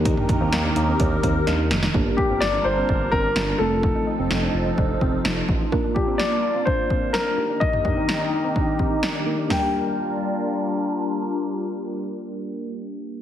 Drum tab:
HH |x-x-x-x-x-x-x-x-|----------------|----------------|----------------|
SD |----o-------o-oo|----o-------o---|----o-------o---|----o-------o---|
T2 |-oo-------------|----------------|----------------|----------------|
FT |----------------|----------------|----------------|----------------|
BD |o-o-----o-o-----|o-o-----o-o-----|o-------o-o---o-|o-o-----o-o-----|

HH |----------------|o---------------|----------------|
SD |----o-------o---|o---------------|----------------|
T2 |-oo-------------|----------------|----------------|
FT |----------------|o---------------|----------------|
BD |o-o-----o-o-----|----------------|----------------|